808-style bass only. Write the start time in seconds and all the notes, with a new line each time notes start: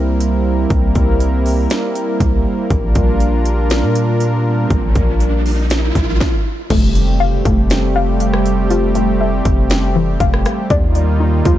Already playing: C2
0.70 C2
0.95 C2
2.20 C2
2.70 A#1
2.96 A#1
3.83 A#2
4.71 A#1
4.96 A#1
5.95 A#1
6.70 F1
7.45 F1
9.45 F1
10.20 F1
10.70 D#2
11.45 D#2